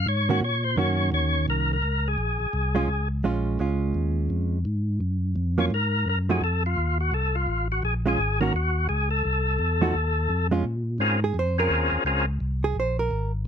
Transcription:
0.06 G#2 C#5
0.29 D#3 A#3 C#4 F#4
0.41 A#2 C#5
0.64 C5
0.76 F#2 D#3 A#3 C#4 F#4 C#5
1.12 D#2 C#5
1.48 C2 A#4
1.73 A#4
1.82 C#2
2.08 G#4
2.18 A#1
2.40 A#1
2.53 C2
2.75 G#3 C#4 F4
2.88 C#2
3.23 A#1 G#3 C#4 F4
3.59 C#2 G#3 C#4 F4
3.94 D#2
4.30 F2
4.65 G#2
5.00 F#2
5.36 F2
5.58 F#3 A#3 C#4 F4 C#5
5.70 G#2 A#4
6.06 F#2 A#4
6.29 F3 A3 D#4 F#4 G#4
6.41 F2 A4
6.66 F4
6.77 D#2
7.01 F#4
7.12 C2 A4
7.35 F4
7.47 A1
7.72 F#4
7.82 A#1 G#4
8.06 G#3 C#4 F4 G#4
8.18 G#1
8.41 D#3 A#3 C#4 F#4 A#4
8.53 D#2 F#4
8.89 C#2 G#4
9.11 A4
9.25 C2
9.59 E2
9.81 F3 A3 D#4 F#4
9.94 D#2
10.29 F2
10.51 G#3 C#4 F4
10.64 A#2
10.98 G#2 C4 C#4 F4 G#4 A#4
11.24 G#4
11.34 F2
11.39 C5
11.58 C4 C#4 F4 G#4 A#4
11.70 D#2
11.91 D#2
12.04 C#2 C4 C#4 F4 G#4 A#4
12.40 C2
12.64 G#4
12.76 A#1 C5
12.99 A#4
13.11 G#1

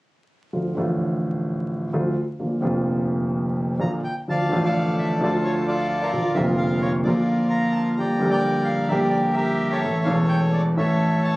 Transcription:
0.53 D2 D3 F3 A3 F4
0.75 A1 A2 D3 F3 A3
0.79 F4
1.93 D2 D3 F3 A3 F4
2.39 A#1 A#2 D3 F3 A#3 F4
2.61 F1 F2 D3 F3 A#3
2.65 F4
3.79 A#1 A#2 D3 F3 A#3 F4 A#5
4.04 G5
4.28 D2 D3 F3 A3 F4 D5 F5 A5
4.49 A1 A2 D3 F3 A3
4.54 F4
4.64 A4 D5 F5
4.99 E5
5.20 D2 D3 F3 A3 F4 A4 D5
5.44 C#5
5.67 F4 A4 D5
6.00 F4 A#4 D5
6.12 A#1 A#2 D3 F3 A#3 F4
6.35 F1 F2 D3 F3 A#3 E5
6.39 F4
6.58 F5
6.82 C#5
7.03 A#1 A#2 D3 F3 A#3 F4 A#4 D5
7.08 F4
7.50 A#5
7.72 A5
7.96 A#1 A#2 D3 G3 A#3 G4 D5 G5 A#5
8.19 A#1 A#2 D3 G3 A#3 G4
8.31 A#4 D5 G5
8.64 F5
8.88 A#1 A#2 D3 G3 A#3 G4 A#4 E5
8.93 G4
9.10 D5
9.34 G4 A#4 E5
9.69 A4 C#5 E5
9.84 A1 A2 E3 A3 C#4 A4
10.04 E1 E2 E3 A3 C#4 A4 F5
10.29 G5
10.53 D5
10.75 A1 A2 E3 A3 C#4 A4 C#5 E5
10.79 A4
11.25 A5

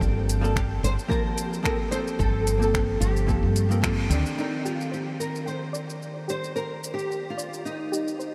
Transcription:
Already playing: F3 A#3 C4 G4 A4 G5
0.01 G1, kick, shaker
0.29 closed hi-hat, shaker
0.41 F3 A#3 C4 A4, shaker
0.56 G4, finger snap, kick, shaker
0.83 G1 C5, closed hi-hat, shaker
0.99 shaker
1.08 F3 A#3 C4 A#4 A5, kick, shaker
1.38 closed hi-hat, shaker
1.53 shaker
1.63 F3 A#3 C4 A4 A#4, finger snap, kick, shaker
1.88 F3 A#3 C4 C5, closed hi-hat, shaker
1.94 A4
2.08 shaker
2.19 G1 A4, kick, shaker
2.47 closed hi-hat, shaker
2.58 F3 A#3 C4
2.62 A4, shaker
2.74 finger snap, kick, shaker
3.00 G1 G4, closed hi-hat, shaker
3.17 shaker
3.27 F3 A#3 C4 A4, kick, shaker
3.43 G2
3.56 closed hi-hat, shaker
3.69 F3 A#3 C4 A#4, shaker
3.82 F3 A#3 C4 A4, finger snap, kick, shaker
4.09 D2 D#3 C4 D4 D5, closed hi-hat, shaker
4.26 shaker
4.35 D#3 C4 D#4 D5, shaker
4.41 A#4
4.65 F4 G4, shaker
4.81 shaker
4.92 G4 C5, shaker
5.20 A#4, shaker
5.36 shaker
5.46 C5 G5, shaker
5.73 D5, shaker
5.90 shaker
6.02 shaker
6.28 G4 C5, shaker
6.44 shaker
6.55 A#4 C5, shaker
6.84 shaker
6.94 G4
6.99 shaker
7.10 G5, shaker
7.30 F4
7.37 D5, shaker
7.54 shaker
7.65 D#4, shaker
7.92 G4, shaker
8.08 shaker
8.19 C5, shaker

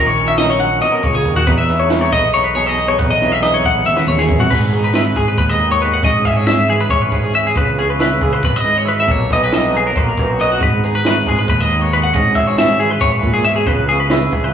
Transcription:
Already playing: A#1 D#3
0.00 D#4
0.06 C#5
0.17 C#4, closed hi-hat
0.28 E5
0.38 F#3 D#4 D#5, snare, closed hi-hat
0.50 C#5
0.60 C#4 F#5, closed hi-hat
0.82 B2 D#5, snare, closed hi-hat
0.92 A#4
1.03 C#2 C#3 C#5, kick, closed hi-hat
1.15 G#4
1.25 D#2 D#3, kick, closed hi-hat
1.36 F#4
1.47 E2 D#4 B4, kick, closed hi-hat
1.58 E5
1.69 B3, snare, closed hi-hat
1.80 C#5
1.90 E3 D#4 B4, snare, closed hi-hat
2.01 C#5
2.11 B1 B3 D#5, kick, closed hi-hat
2.34 D#4 C#5, closed hi-hat
2.44 B4
2.55 B2 G#4 C#5, closed hi-hat
2.66 D#5
2.78 D#4, closed hi-hat
2.88 C#5
2.99 B1 E2 D#4 B4, kick, closed hi-hat
3.10 D#5
3.21 B3, snare
3.32 E5
3.42 E3 D#4 D#5, snare
3.54 C#5
3.64 B3 F#5, kick
3.86 E5, mid tom
3.97 B4, snare
4.07 D#2 E2 C#5, mid tom
4.18 G#4, snare
4.28 E2 F#2, kick
4.39 F#4, floor tom
4.50 G#1 G#2 B3 B4, kick, crash
4.72 D#4 G#4, closed hi-hat
4.84 B4
4.93 E4 B4, snare, closed hi-hat
5.05 F#4
5.15 G#1 G#3 G#4, kick, closed hi-hat
5.28 B4
5.37 D#2 B3 B4, kick, closed hi-hat
5.50 D#5
5.59 D#3 D#4, closed hi-hat
5.72 C#5
5.81 F#4 B4, closed hi-hat
5.94 F#5
6.03 G#1 G#2 C#4 D#5, kick, closed hi-hat
6.25 G#1 G#4 E5, kick, closed hi-hat
6.37 C#5
6.47 G#4 E5, snare, closed hi-hat
6.69 E3 G#4, closed hi-hat
6.81 B4
6.90 G#1 C#4 C#5, kick, closed hi-hat
7.02 B4
7.12 G#1 G#2 G#4, kick, closed hi-hat
7.24 G#4
7.33 G#4 E5, closed hi-hat
7.47 G#4
7.56 C#2 C#3 B3 B4, kick, closed hi-hat
7.78 C#4 G#4, closed hi-hat
7.90 B4
7.99 E4 B4, snare, closed hi-hat
8.21 C#2 E3 G#4, kick, closed hi-hat
8.33 B4
8.43 G#1 B3 B4, kick, closed hi-hat
8.56 D#5
8.64 G#2 B3, closed hi-hat
8.75 C#4 C#5
8.85 E4 B4, closed hi-hat
9.00 E5
9.06 B1 B2 A#3, kick, closed hi-hat
9.11 C#5
9.29 B1 D#4 D#5, kick, snare, closed hi-hat
9.44 B4
9.51 E4 D#5, snare, closed hi-hat
9.62 F#4
9.74 F#3 G#4, closed hi-hat
9.87 A#4
9.95 B1 A#3 B4, kick, closed hi-hat
10.09 A#4
10.17 B1 F#2 D#4, kick, closed hi-hat
10.30 F#4
10.39 F#4 D#5, closed hi-hat
10.51 F#4
10.60 G#1 G#2 B3 B4, kick, closed hi-hat
10.84 D#4 G#4, closed hi-hat
10.95 B4
11.05 F#4 B4, snare, closed hi-hat
11.26 G#1 G#3 G#4, kick, snare, closed hi-hat
11.39 B4
11.48 D#2 B3 B4, kick, closed hi-hat
11.61 D#5
11.71 D#3 D#4, closed hi-hat
11.81 C#5
11.93 F#4 B4, closed hi-hat
12.04 F#5
12.14 G#1 G#2 C#4 D#5, kick, closed hi-hat
12.35 G#1 G#4 E5, kick, closed hi-hat
12.47 C#5
12.58 G#4 E5, snare, closed hi-hat
12.79 E3 G#4, closed hi-hat
12.90 B4
13.01 G#1 G#2 C#5, kick, closed hi-hat
13.12 B4
13.23 G#2 A#2, kick, closed hi-hat
13.34 G#4
13.45 B2 E5, closed hi-hat
13.56 G#4
13.66 C#2 C#3 B3 B4, kick, closed hi-hat
13.89 C#4 G#4, closed hi-hat
14.00 B4
14.10 E4 B4, snare, closed hi-hat
14.31 C#2 E3 G#4, kick, closed hi-hat
14.44 B4

